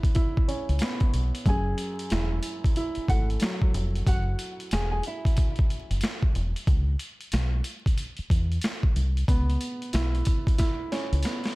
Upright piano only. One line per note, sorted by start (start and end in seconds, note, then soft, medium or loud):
0.00 0.81 B3 medium
0.00 0.14 E4 medium
0.15 1.46 E4 loud
0.48 1.46 C#4 medium
0.81 1.46 B3 medium
1.46 2.77 F#2 medium
2.11 2.75 E4 medium
2.77 4.07 E4 loud
3.10 4.07 A3 medium
3.41 4.07 F#3 medium
9.28 10.59 B3 medium
9.93 10.57 E4 medium
10.59 11.55 E4 medium
10.92 11.55 C#4 medium
11.25 11.55 B3 medium